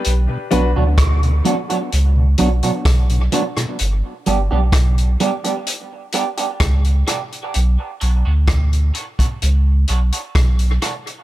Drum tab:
HH |x-x-xxxxx-xxxxxx|x-x-xxxxx-xxxxxx|x-x-xxxxx-xxxxxx|
SD |----r-------r--r|----r-------r-r-|----r-------r-r-|
BD |----o-------o---|----o-------o---|----o--o----o---|